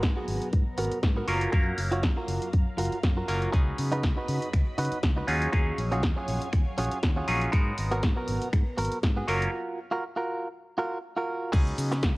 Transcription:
Already playing: F#3 G#3 B3 D#4 F#4 A#4 A#5
0.03 G#2, kick, snare, closed hi-hat
0.16 B3 F#4 G#4
0.28 G#1, open hi-hat
0.42 closed hi-hat
0.53 G#2, kick, closed hi-hat
0.78 G#1 B3 F#4 A#4, open hi-hat
0.85 closed hi-hat
0.92 muted fingered electric bass stroke, closed hi-hat
1.03 G#2, kick, snare, closed hi-hat
1.17 B3 F#4 A#4
1.28 F#1 F#3 A#3 C#4 F4 F#4 A#4 F5, open hi-hat
1.41 closed hi-hat
1.52 F#2 F#3 A#3 C#4 A#4 F5, kick, closed hi-hat
1.78 F#1, open hi-hat
1.92 F4 F#4 C#5, closed hi-hat
2.03 F#2, kick, snare, closed hi-hat
2.17 F4 F#4 A#4
2.28 F#1, open hi-hat
2.42 closed hi-hat
2.53 F#2, kick, closed hi-hat
2.78 F#1 F4 F#4 A#4, open hi-hat
2.85 closed hi-hat
2.92 muted fingered electric bass stroke, closed hi-hat
3.03 F#2, kick, snare, closed hi-hat
3.17 F4 F#4 A#4
3.28 F#1 F#3 A#3 C#4 F4 A#4, open hi-hat
3.42 closed hi-hat
3.52 C#2 F#3 B3 C#4 D#4 G#4 D#5 B5, kick, closed hi-hat
3.78 C#3, open hi-hat
3.91 D#4 F#4 B4, closed hi-hat
4.03 C#2, kick, snare, closed hi-hat
4.16 D#4 F#4 B4
4.28 C#3, open hi-hat
4.42 closed hi-hat
4.53 C#2, finger snap, kick, closed hi-hat
4.78 C#3 D#4 F#4 B4, open hi-hat
4.85 closed hi-hat
4.92 muted fingered electric bass stroke, closed hi-hat
5.03 C#2, kick, snare, closed hi-hat
5.17 D#4 F#4 B4
5.28 D#2 F#3 C#4 D#4 F4 F#4 G#4 C#5 F5 G#5, open hi-hat
5.42 closed hi-hat
5.53 D#2 F#3 C#4 D#4 G#4 F5, kick, closed hi-hat
5.78 A#1, open hi-hat
5.92 C#4 F4 F#4 G#4, closed hi-hat
6.03 D#2, kick, snare, closed hi-hat
6.16 C#4 F4 F#4 G#4
6.28 A#1, open hi-hat
6.42 closed hi-hat
6.53 D#2, finger snap, kick, closed hi-hat
6.78 A#1 C#4 F4 F#4 G#4, open hi-hat
6.85 closed hi-hat
6.92 closed hi-hat
7.03 D#2, kick, snare, closed hi-hat
7.16 C#4 F4 F#4 G#4
7.28 A#1 F#3 C#4 D#4 F4 G#4, open hi-hat
7.41 closed hi-hat
7.52 G#2 G#3 B3 D#4 F#4 A#4 A#5, kick, closed hi-hat
7.78 G#1, open hi-hat
7.91 B3 F#4 A#4, closed hi-hat
8.03 G#2, kick, snare, closed hi-hat
8.16 B3 F#4 A#4
8.28 G#1, open hi-hat
8.42 closed hi-hat
8.53 G#2, finger snap, kick, closed hi-hat
8.78 G#1 B3 F#4 A#4, open hi-hat
8.85 closed hi-hat
8.92 muted fingered electric bass stroke, closed hi-hat
9.03 G#2, kick, snare, closed hi-hat
9.16 B3 F#4 G#4
9.27 F#1 F#3 A#3 C#4 F4 F#4 A#4 F5, open hi-hat
9.42 closed hi-hat
9.91 F4 F#4 A#4
10.16 F4 F#4 A#4
10.78 F4 F#4 A#4
11.17 F4 F#4 A#4
11.52 C#2 F#3 B3 C#4 D#4 G#4 D#5 B5, kick, closed hi-hat, crash, shaker
11.67 closed hi-hat, shaker
11.78 C#3, open hi-hat, shaker
11.92 muted clean electric guitar stroke, snare, closed hi-hat, shaker
12.03 C#2, muted clean electric guitar stroke, kick, snare, closed hi-hat, shaker

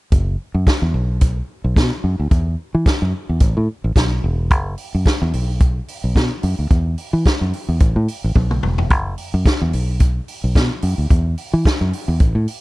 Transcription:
0.12 F#1, kick, closed hi-hat
0.55 F#2
0.66 kick, snare, closed hi-hat
0.82 E2
0.94 B1
1.21 kick, closed hi-hat
1.64 B1
1.76 B2, kick, snare, closed hi-hat
2.04 F#2
2.19 D2
2.31 E2, kick, closed hi-hat
2.75 E3
2.86 kick, snare, closed hi-hat
3.02 F#2
3.29 E2
3.40 A1, kick, closed hi-hat
3.57 A2
3.84 A1
3.96 B1, kick, snare, closed hi-hat
4.24 E1
4.50 F#1, kick, closed hi-hat
4.78 open hi-hat
4.95 F#2
5.06 kick, snare, closed hi-hat
5.22 E2
5.33 B1, open hi-hat
5.60 kick, closed hi-hat
5.88 open hi-hat
6.04 B1
6.16 B2, kick, snare, closed hi-hat
6.43 F#2, open hi-hat
6.59 D2
6.71 E2, kick, closed hi-hat
6.98 open hi-hat
7.13 E3
7.25 kick, snare, closed hi-hat
7.41 F#2
7.53 open hi-hat
7.69 E2
7.80 A1, kick, closed hi-hat
7.96 A2
8.08 open hi-hat
8.24 A1
8.35 B1, kick, high tom
8.51 mid tom
8.63 E1, mid tom
8.78 floor tom
8.90 F#1, kick, closed hi-hat
9.18 open hi-hat
9.34 F#2
9.46 kick, snare, closed hi-hat
9.62 E2
9.73 B1, open hi-hat
10.00 kick, closed hi-hat
10.28 open hi-hat
10.44 B1
10.55 B2, kick, snare, closed hi-hat
10.82 F#2, open hi-hat
10.98 D2
11.11 E2, kick, closed hi-hat
11.38 open hi-hat
11.53 E3
11.65 kick, snare, closed hi-hat
11.81 F#2
11.93 open hi-hat
12.08 E2
12.20 A1, kick, closed hi-hat
12.35 A2
12.48 open hi-hat

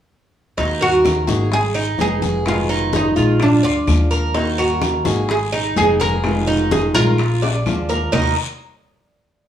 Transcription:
0.57 D#2 D#3 A#3 D#4 F#4, high bongo, high conga, long guiro
0.81 F#4 A#4, high bongo, high conga
1.05 high bongo, high conga, short guiro, claves
1.27 G#1 A#3 D#4 F#4 G#4, high bongo, high conga, short guiro
1.52 G#4, muted nylon-string guitar stroke, high bongo, high conga, long guiro
1.75 D#4, high bongo, high conga, claves
1.98 F1 G#3 B3 D#4 G#4, high bongo, low bongo, high conga, short guiro
2.22 G#4, high conga, short guiro
2.45 B2 D#3 G#3 D#4 F4, high bongo, high conga, long guiro, claves
2.69 D#4, high bongo, high conga
2.93 D#4, high bongo, high conga, short guiro
3.16 A#1 D#3 G#3 D#4 F4, high bongo, high conga, short guiro
3.40 D4, muted nylon-string guitar stroke, high bongo, high conga, long guiro, claves
3.63 D2 F4 D5, high bongo, high conga
3.87 D#2 F3 G#3 D4 F4, high bongo, low bongo, high conga, short guiro, claves
4.11 A#4, high conga, short guiro
4.34 D#3 A#3 D#4 F#4, high bongo, high conga, long guiro
4.58 F#4 A#4, high bongo, high conga
4.81 high bongo, high conga, short guiro, claves
5.05 G#1 A#3 D#4 F#4 G#4, high bongo, high conga, short guiro
5.29 G#4, muted nylon-string guitar stroke, high bongo, high conga, long guiro
5.52 D#4, high bongo, high conga, claves
5.76 F1 G#3 B3 D#4 G#4, high bongo, low bongo, high conga, short guiro
6.00 G#4 A#4, high conga, short guiro
6.23 B2 D#3 G#3 D#4 F4, high bongo, high conga, long guiro, claves
6.47 D#4, high bongo, high conga
6.71 G#4, high bongo, high conga, short guiro
6.94 A#1 D#3 G#3 D#4 F4 A#4, high bongo, high conga, short guiro
7.18 muted nylon-string guitar stroke, high bongo, high conga, long guiro, claves
7.42 D5, high bongo, high conga
7.66 D#2 F3 G#3 D4 F4, low bongo, high conga, short guiro, claves
7.89 A#4, low bongo, high conga, short guiro
8.12 D#2 D#3 A#3 D#4 F#4 A#4 D#5, low bongo, low conga, long guiro, claves

